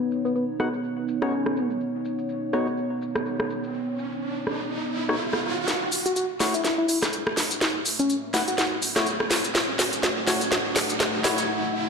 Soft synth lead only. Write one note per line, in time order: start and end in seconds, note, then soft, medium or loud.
0.00 0.22 B3 medium
0.25 0.32 B3 medium
0.36 0.44 B3 medium
1.22 1.70 C#4 medium
6.06 6.12 F#4 medium
6.16 6.25 F#4 medium
6.54 6.61 E4 medium
6.64 6.73 E4 medium
6.78 6.85 E4 medium
6.89 6.98 E4 medium
7.99 8.15 C#4 medium
8.48 8.54 F#4 medium
8.58 8.67 F#4 medium